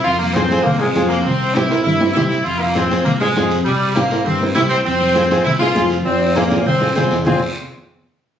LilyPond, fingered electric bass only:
\new Staff \with { instrumentName = "Fingered electric bass" } { \clef bass \time 4/4 \key f \minor \tempo 4 = 200 f,2 c,4 f,4 | c,2 g,4 c,4 | f,2 c,4 f,4 | c,2 g,4 c,4 |
f,2 c,4 f,4 | f,2 c,4 c,8 e,8 | f,,8 r2. r8 | }